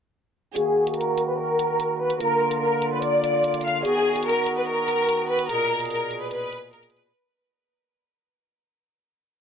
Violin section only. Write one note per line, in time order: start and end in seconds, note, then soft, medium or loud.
0.56 0.95 G#4 loud
0.97 1.26 A#4 medium
1.28 1.36 B4 medium
1.38 1.96 A#4 medium
2.00 2.17 B4 medium
2.20 2.59 A#4 loud
2.62 2.91 A#4 medium
2.92 3.01 B4 medium
3.03 3.61 D5 medium
3.64 3.81 F5 medium
3.85 4.24 G#4 loud
4.26 4.55 A#4 medium
4.57 4.65 B4 medium
4.68 5.25 A#4 medium
5.29 5.45 B4 medium
5.49 5.88 A#4 loud
5.91 6.20 A#4 medium
6.21 6.30 B4 medium
6.32 6.70 B4 medium
6.73 6.89 A#4 medium
6.93 7.10 B4 medium